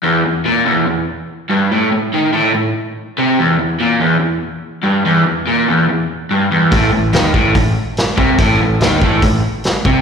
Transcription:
<<
  \new Staff \with { instrumentName = "Overdriven electric guitar" } { \clef bass \time 4/4 \key a \major \tempo 4 = 144 e,8 e,8 bes,8 e,8 e,8 r4 g,8 | a,8 a,8 ees8 a,8 a,8 r4 c8 | e,8 e,8 bes,8 e,8 e,8 r4 g,8 | e,8 e,8 bes,8 e,8 e,8 r8 g,8 e,8 |
a,8 a,8 ees8 a,8 a,8 r4 c8 | a,8 a,8 ees8 a,8 a,8 r4 c8 | }
  \new Staff \with { instrumentName = "Picked electric bass" } { \clef bass \time 4/4 \key a \major r1 | r1 | r1 | r1 |
a,,8 a,,8 ees,8 a,,8 a,,8 r4 c,8 | a,,8 a,,8 ees,8 a,,8 a,,8 r4 c,8 | }
  \new DrumStaff \with { instrumentName = "Drums" } \drummode { \time 4/4 r4 r4 r4 r4 | r4 r4 r4 r4 | r4 r4 r4 r4 | r4 r4 r4 r4 |
<hho bd>4 <hho sn>8 bd8 <hho bd>4 <hho sn>8 bd8 | <hho bd>4 <hho sn>8 bd8 <hho bd>4 <hho sn>8 bd8 | }
>>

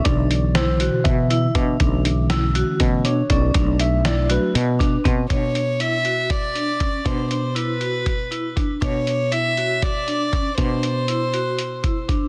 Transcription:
<<
  \new Staff \with { instrumentName = "Violin" } { \time 7/8 \key b \minor \tempo 4 = 120 r2. r8 | r2. r8 | r2. r8 | cis''4 e''4 d''4. |
c''8 c''8 b'2 r8 | cis''4 e''4 d''4. | c''2. r8 | }
  \new Staff \with { instrumentName = "Vibraphone" } { \time 7/8 \key b \minor d'4 e'8 fis'4 e'8 d'8 | d'4 e'8 fis'4 d'8 cis'8 | d'4 e'8 fis'4 d'8 c'8 | d'4 e'8 fis'4 d'8 cis'8 |
d'4 e'8 fis'4 e'8 d'8 | d'4 e'8 fis'4 d'8 cis'8 | d'4 e'8 fis'4 e'8 d'8 | }
  \new Staff \with { instrumentName = "Tine electric piano" } { \time 7/8 \key b \minor d''4 c''4 e''4.~ | e''4 r4. cis''8 d''8~ | d''8 e''8 d''8 b'4. r8 | r2. r8 |
r2. r8 | r2. r8 | r2. r8 | }
  \new Staff \with { instrumentName = "Tine electric piano" } { \clef bass \time 7/8 \key b \minor <b, d e>2.~ <b, d e>8 | <d e a cis'>2 <d e a cis'>8 r4 | <fis a d'>4. <fis a d'>8 r4. | r2. r8 |
r2. r8 | r2. r8 | r2. r8 | }
  \new Staff \with { instrumentName = "Fretless electric bass" } { \clef bass \time 7/8 \key b \minor b,,2 b,4 b,8 | b,,2 b,4 b,,8 | b,,2 b,4 b,8 | b,2.~ b,8 |
b,2.~ b,8 | b,2.~ b,8 | b,2.~ b,8 | }
  \new DrumStaff \with { instrumentName = "Drums" } \drummode { \time 7/8 <hh bd>8 hh8 <hh sn>8 hh8 <hh bd>8 hh8 <hh bd>8 | <hh bd>8 hh8 <hh sn>8 hh8 <hh bd>8 hh8 <hh bd>8 | <hh bd>8 hh8 <hh sn>8 hh8 hh8 <hh bd sn>8 <hh bd>8 | <hh bd>8 hh8 hh8 hh8 <hh bd>8 hh8 <hh bd>8 |
<hh bd>8 hh8 hh8 hh8 <hh bd>8 hh8 <hh bd>8 | <hh bd>8 hh8 hh8 hh8 <hh bd>8 hh8 <hh bd>8 | <hh bd>8 hh8 hh8 hh8 hh8 <hh bd>8 <hh bd>8 | }
>>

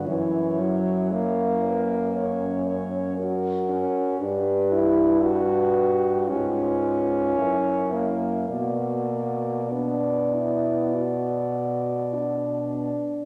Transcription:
<<
  \new Staff \with { instrumentName = "French horn" } { \time 4/4 \key b \minor \tempo 4 = 55 cis''4 cis''8 b'8 cis''8 cis''8 ais'4 | b'4 b'4 b'4 ais'4 | d''4 d''2~ d''8 r8 | }
  \new Staff \with { instrumentName = "French horn" } { \time 4/4 \key b \minor e'4.~ e'16 r16 cis'4 fis'4 | g'4 g'4 eis'4 e'4 | fis'4 d'8 e'8 fis'4 d'4 | }
  \new Staff \with { instrumentName = "French horn" } { \time 4/4 \key b \minor e8 fis8 ais2 r8 cis'8 | d'8 e'8 fis'4 cis'4. ais8 | ais4 b2~ b8 r8 | }
  \new Staff \with { instrumentName = "French horn" } { \clef bass \time 4/4 \key b \minor fis,1 | g,2 gis,4 fis,4 | b,2.~ b,8 r8 | }
>>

